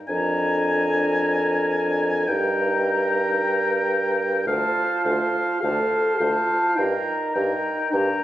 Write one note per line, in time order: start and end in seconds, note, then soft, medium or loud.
0.08 2.30 F2 soft
0.08 2.23 D4 medium
0.08 2.24 A#4 soft
0.08 2.29 G#5 soft
0.08 2.23 A#5 soft
2.27 4.46 G2 soft
2.27 3.34 D#4 medium
2.27 4.43 A#4 soft
2.27 4.47 G5 soft
2.27 4.19 A#5 soft
4.47 4.63 D2 soft
4.47 5.63 F4 medium
4.47 5.03 C5 soft
4.47 5.03 F5 soft
4.47 5.04 A5 soft
5.04 5.21 D2 soft
5.04 5.60 C5 soft
5.04 5.60 F5 soft
5.04 5.61 A5 soft
5.61 5.79 D2 soft
5.61 6.21 A4 medium
5.61 6.18 C5 soft
5.61 6.18 F5 soft
5.61 6.18 A5 soft
6.18 6.36 D2 soft
6.18 6.77 F4 medium
6.18 6.76 C5 soft
6.18 6.75 F5 soft
6.18 6.75 A5 soft
6.76 6.94 G2 soft
6.76 7.93 D#4 medium
6.76 7.34 A#4 soft
6.76 7.17 G5 soft
6.76 7.33 A#5 soft
7.33 7.51 G2 soft
7.33 7.92 A#4 soft
7.33 7.91 G5 soft
7.33 7.91 A#5 soft
7.91 8.09 G2 soft
7.91 8.24 D4 medium
7.91 8.24 A#4 soft
7.91 8.24 G5 soft
7.91 8.24 A#5 soft